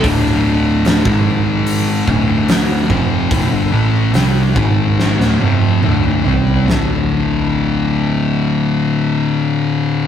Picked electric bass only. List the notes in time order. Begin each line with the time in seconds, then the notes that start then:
0.04 D1
1.05 G#1
2.07 D1
2.90 F1
3.31 F1
3.51 G1
3.72 A1
4.13 C2
4.56 G#1
5.18 D1
5.39 F1
5.81 D1
6.24 C2
6.66 D1